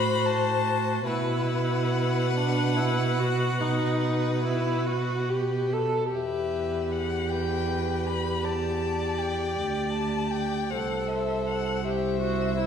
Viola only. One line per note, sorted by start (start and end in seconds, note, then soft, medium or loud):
0.00 1.03 F#4 medium
1.08 2.24 E4 medium
2.34 2.77 D4 medium
2.76 3.21 E4 medium
3.19 3.62 F#4 medium
3.61 4.44 D#4 medium
4.44 4.88 E4 medium
4.87 5.31 F#4 medium
5.29 5.74 G4 medium
5.73 6.13 A4 medium
6.14 10.73 G4 medium
10.71 11.84 A4 medium
11.85 12.20 G4 medium
12.21 12.56 F#4 medium
12.58 12.66 E4 medium